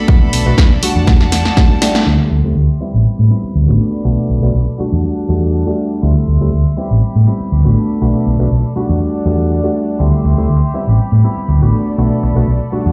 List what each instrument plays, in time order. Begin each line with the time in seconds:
Already playing: string section A4 D5 B5
0.08 fingered electric bass B1, reed electric piano A3 B3 D4 F#4, kick
0.33 fingered electric bass B1, open hi-hat
0.46 fingered electric bass B1, reed electric piano A3 B3 D4 F#4
0.58 kick, snare
0.82 reed electric piano G3 A3 D4 F#4, string section G3 F#5 A5, muted fingered electric bass stroke, open hi-hat
0.96 fingered electric bass E2
1.07 fingered electric bass E2, kick, snare
1.21 snare
1.32 snare, open hi-hat
1.45 snare
1.57 reed electric piano G3 A3 D4 F#4, kick, snare
1.81 reed electric piano G3 A3 D4 G4, snare, open hi-hat
1.95 snare
2.06 fingered electric bass D2, reed electric piano G3 A3 C4 E4, string section G4 E5 C6
2.31 fingered electric bass D2
2.44 fingered electric bass D2, reed electric piano G3 A3 C4 E4
2.56 fingered electric bass D2
2.81 reed electric piano G3 B3 C4 E4, string section B5
2.94 fingered electric bass A1
3.06 muted fingered electric bass stroke
3.19 fingered electric bass A2
3.30 reed electric piano G3 B3 C4 E4
3.44 muted fingered electric bass stroke
3.55 fingered electric bass D2
3.68 fingered electric bass A1, reed electric piano A3 B3 D4 F#4
3.80 string section A4 D5
4.04 fingered electric bass B1, reed electric piano A3 B3 D4 F#4
4.30 fingered electric bass B1
4.42 fingered electric bass B1, reed electric piano A3 B3 D4 F#4
4.54 fingered electric bass B1
4.79 reed electric piano G3 A3 D4 F#4, string section G3 D5 F#5 A5, muted fingered electric bass stroke
4.92 fingered electric bass E2
5.29 fingered electric bass E2, reed electric piano G3 A3 D4 F#4
5.66 reed electric piano G3 A3 D4 F#4
6.03 fingered electric bass D2, reed electric piano G3 A3 C4 E4, string section E5 C6
6.28 fingered electric bass D2
6.41 fingered electric bass D2, reed electric piano G3 A3 C4 E4
6.53 fingered electric bass D2
6.77 reed electric piano G3 B3 C4 E4, string section G4 B5
6.91 fingered electric bass A1
7.02 muted fingered electric bass stroke
7.15 fingered electric bass A2
7.27 reed electric piano G3 B3 C4 E4
7.40 muted fingered electric bass stroke
7.52 fingered electric bass D2
7.65 fingered electric bass A1, reed electric piano A3 B3 D4 F#4
7.77 string section A4 D5
8.01 fingered electric bass B1, reed electric piano A3 B3 D4 F#4
8.27 fingered electric bass B1
8.39 fingered electric bass B1, reed electric piano A3 B3 D4 F#4
8.51 fingered electric bass B1
8.76 reed electric piano G3 A3 D4 F#4, string section G3 D5 F#5 A5, muted fingered electric bass stroke
8.89 fingered electric bass E2
9.25 fingered electric bass E2, reed electric piano G3 A3 D4 F#4
9.64 reed electric piano G3 A3 D4 F#4
10.00 fingered electric bass D2, reed electric piano G3 A3 C4 E4, string section G4 E5 C6
10.25 fingered electric bass D2
10.38 reed electric piano G3 A3 C4 E4
10.50 fingered electric bass D2
10.74 reed electric piano G3 B3 C4 E4, string section B5
10.87 fingered electric bass A1
10.99 muted fingered electric bass stroke
11.12 fingered electric bass A2
11.24 reed electric piano G3 B3 C4 E4
11.37 muted fingered electric bass stroke
11.49 fingered electric bass D2
11.62 fingered electric bass A1, reed electric piano A3 B3 D4 F#4
11.73 string section A4 D5
11.98 fingered electric bass B1, reed electric piano A3 B3 D4 F#4
12.23 fingered electric bass B1
12.36 fingered electric bass B1, reed electric piano A3 B3 D4 F#4
12.48 fingered electric bass B1
12.72 reed electric piano G3 A3 D4 F#4, string section G3 F#5 A5, muted fingered electric bass stroke
12.86 fingered electric bass E2